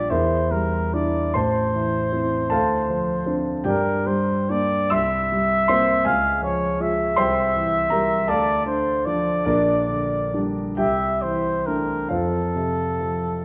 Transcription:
Already playing: A#1 G3 D4 F4 G4 D5 G5
0.10 E2 E4 A#4 C5 E5
0.51 G3 A#4
0.93 D4 E4 D5
1.34 A1 C5 A5 C6
1.74 E3
2.13 C4 E4
2.50 D2 A4 F5 A5
2.90 F3
3.26 C4 D4
3.64 G2 G4 A#4 D5 G5
4.06 G3 C5
4.49 A#3 D4 D5
4.90 C2 E5 C6 E6
5.32 G3
5.68 A#3 C4 C5 C6
6.05 C#2 G#4 F5 G#5
6.42 F3 C#5
6.80 G#3 F4 E5
7.16 C2 C5 G5 C6
7.55 E3
7.90 G3 G4 A#4 A#5
8.28 D2 A4 D5 F5 A5
8.66 D3 C5
9.05 F3 D4 D5
9.45 A#1 D4 A#4 D5
9.88 D3
10.34 G3 D4
10.77 C2 G4 E5 G5
11.22 E3 C5
11.66 A3 D4 A#4
12.09 F2 F4 A4 C5 F5
12.55 C3
13.00 F3

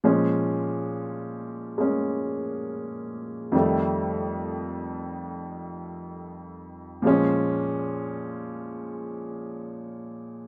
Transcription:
0.04 A#2 F3 G#3 C#4
1.78 G#3 A#3 C#4
3.52 F2 D#3 G3
3.56 A3
7.02 A#2 F3 G#3
7.07 C#4

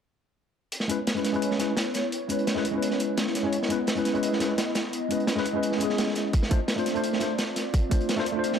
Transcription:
0.72 B3 E4 C#5, closed hi-hat
0.80 snare
0.88 G#3 C#4 E4 B4, closed hi-hat
1.07 snare, closed hi-hat
1.15 G#3 C#4 E4 B4, closed hi-hat
1.25 snare, closed hi-hat
1.32 G#3 C#4 E4 B4, closed hi-hat
1.42 closed hi-hat
1.51 snare
1.58 G#3 C#4 E4 B4, snare, closed hi-hat
1.77 snare, closed hi-hat
1.94 snare, closed hi-hat
2.12 closed hi-hat
2.28 G#3 C#4 E4 B4, closed hi-hat
2.39 closed hi-hat
2.47 snare, closed hi-hat
2.55 G#3 C#4 E4 B4, snare
2.65 closed hi-hat
2.71 G#3 C#4
2.75 E4 B4
2.82 closed hi-hat
2.91 snare
3.00 closed hi-hat
3.17 snare, closed hi-hat
3.27 snare
3.35 snare, closed hi-hat
3.43 G#3 C#4 E4 C#5
3.52 D#5, closed hi-hat
3.63 snare
3.69 G#3 C#4 E4 B4, closed hi-hat
3.87 snare, closed hi-hat
3.96 G#3 C#4 E4 B4, closed hi-hat
4.05 snare, closed hi-hat
4.13 G#3 C#4 E4 B4, closed hi-hat
4.23 closed hi-hat
4.33 snare
4.39 G#3 C#4 E4 B4, snare, closed hi-hat
4.58 snare, closed hi-hat
4.75 snare, closed hi-hat
4.93 closed hi-hat
5.09 G#3 C#4 E4 B4, closed hi-hat
5.20 closed hi-hat
5.27 snare, closed hi-hat
5.36 G#3 C#4 E4 B4, snare
5.45 closed hi-hat
5.53 G#3 C#4 E4 B4
5.63 closed hi-hat
5.72 snare
5.78 G#3 C#4, closed hi-hat
5.82 E4 G#4
5.89 snare
5.98 snare, closed hi-hat
6.07 snare
6.15 snare, closed hi-hat
6.33 C4 F4 D5, kick, closed hi-hat
6.43 snare
6.49 A3 D4 F4 C5, kick, closed hi-hat
6.68 snare, closed hi-hat
6.76 A3 D4 F4 C5, closed hi-hat
6.86 snare, closed hi-hat
6.94 A3 D4 F4 C5, closed hi-hat
7.04 closed hi-hat
7.13 snare
7.20 A3 D4 F4 C5, snare, closed hi-hat
7.38 snare, closed hi-hat
7.56 snare, closed hi-hat
7.74 kick, closed hi-hat
7.90 A3 D4 F4 C5, kick, closed hi-hat
8.01 closed hi-hat
8.09 snare, closed hi-hat
8.16 A3 D4 F4 C5, snare
8.26 closed hi-hat
8.32 A3 D4
8.37 F4 C5
8.44 closed hi-hat
8.53 snare

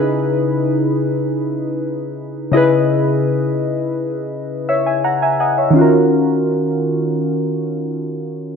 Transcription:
Already playing: C#3 D#4 E4 G#4 B4
2.52 C#3 E4 G#4 D#5
2.57 B4
4.69 C#5 E5
4.86 E5 G#5
5.04 F#5 A#5
5.22 E5 G#5
5.40 D#5 F#5 G#5
5.58 C#5 E5
5.70 D#3 C#4
5.76 F4 F#4
5.81 A#4

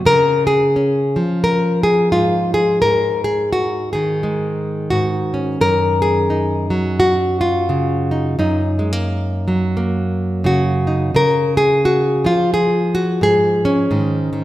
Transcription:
0.05 C#3 A#4
0.47 G#4
0.76 C#4
1.16 F3
1.44 A#4
1.83 G#4
2.12 G#2 F4
2.54 G#4
2.82 G#2 A#4
3.24 G#4
3.53 F#4
3.93 D#3 G#4
4.23 G#3
4.90 G#2 F#4
5.34 C#4
5.61 F#2 A#4
6.02 G#4
6.30 D#4
6.70 F#3
7.00 F#4
7.41 F4
7.69 C#3
8.11 D#4
8.39 F#2 D#4
8.79 G#3
8.93 A#3
9.48 F#3
9.77 A#3
10.44 C#3 F#4
10.87 D#4
11.15 C#3 A#4
11.57 G#4
11.85 F#4
12.24 F3 F4
12.54 G#4
12.95 F#4
13.21 G#2 G#4
13.65 C#4
13.91 G#2 D#3
14.33 D#3

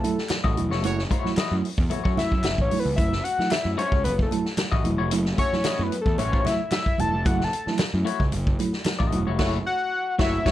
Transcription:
Already playing: A4
0.03 F#3 A3 E4, closed hi-hat, muted conga
0.18 snare
0.29 A3 E4, snare, clap, closed hi-hat, high conga
0.44 A1 A3 E4 F#4 D#5, kick
0.57 E1 F#3 A3 E4, closed hi-hat, high conga
0.71 F1 A3 E4 F#4 C#5, snare
0.84 F#1 F#3 A3 E4 F#4 C#5, closed hi-hat, muted conga
0.99 snare
1.11 A3 E4 F#4 C#5, kick, closed hi-hat
1.25 F#3 A3 E4, muted picked electric bass stroke, snare
1.37 A3 E4 F#4 D#5, muted picked electric bass stroke, snare, clap, closed hi-hat, high conga
1.51 F#2 F#3 A3 E4
1.65 open hi-hat
1.78 E2, kick
1.90 A3 E4 F#4 C#5, closed hi-hat, muted conga
2.04 F#2 A3 E4 F#4 C#5, kick
2.17 F#3 A3 E4 E5, snare, closed hi-hat, muted conga, low conga
2.32 F#2, kick
2.44 F#1 A3 E4, snare, clap, closed hi-hat, high conga
2.58 A1 C#5, kick
2.71 F#3 A3 E4, open hi-hat, high conga
2.79 B4
2.85 C#2, high conga
2.96 F#1 F#3 A3 E4 E5, kick, closed hi-hat, muted conga
3.12 snare
3.24 F#5, closed hi-hat
3.39 F#3 A3 E4, muted picked electric bass stroke, snare
3.51 E5, muted picked electric bass stroke, snare, clap, closed hi-hat, high conga
3.65 F#2 F#3 A3 E4
3.77 A3 E4 F#4 C#5, closed hi-hat
3.92 C#2, kick
4.04 F#1 B4, closed hi-hat, muted conga
4.19 A4, kick
4.31 F#3 A3 E4, closed hi-hat, muted conga
4.46 snare
4.57 A3 E4, snare, clap, closed hi-hat, high conga
4.72 A1 A3 E4 F#4 D#5, kick
4.84 E1 F#3 A3 E4, closed hi-hat, high conga
4.98 F1 A3 E4 F#4 C#5
5.11 F#1 F#3 A3 E4, closed hi-hat, muted conga
5.25 snare
5.38 A3 E4 F#4 C#5, kick, closed hi-hat
5.53 F#3 A3 E4, muted picked electric bass stroke, snare
5.64 A3 E4 F#4 D#5, muted picked electric bass stroke, snare, clap, closed hi-hat, high conga
5.79 F#2 F#3 A3 E4 B4
5.92 closed hi-hat
6.01 A4
6.06 E2, kick
6.18 A1 A3 E4 F#4 C#5, closed hi-hat, muted conga
6.32 A3 E4 F#4 C#5, kick
6.45 F#3 A3 E4 E5, snare, closed hi-hat, muted conga, low conga
6.71 A3 E4 E5, snare, clap, closed hi-hat, high conga
6.86 kick
6.98 E1 F#3 A3 E4 A5, closed hi-hat, high conga
7.14 F1
7.25 F#1 F#3 A3 E4 F#5, kick, closed hi-hat, muted conga
7.41 A5, snare
7.53 closed hi-hat
7.67 F#3 A3 E4, muted picked electric bass stroke, snare
7.78 muted picked electric bass stroke, snare, clap, closed hi-hat, high conga
7.94 F#2 F#3 A3 E4
8.05 A3 E4 F#4 C#5, closed hi-hat
8.20 C#2, kick
8.32 F#1, closed hi-hat, muted conga
8.47 kick
8.59 F#3 A3 E4, closed hi-hat, muted conga
8.73 snare
8.85 A3 E4, snare, clap, closed hi-hat, high conga
8.99 A1 A3 E4 F#4 D#5, kick
9.12 E1 F#3 A3 E4, closed hi-hat, high conga
9.27 F1 A3 E4 F#4 C#5
9.39 F#1 F#3 A3 E4 F#4 C#5, kick, snare, crash
9.66 F#5
10.19 F#1 F#3 A3 E4 F#4 C#5 E5, kick, snare
10.45 F#1 F#3 A3 E4 F#4 C#5, kick, snare, crash

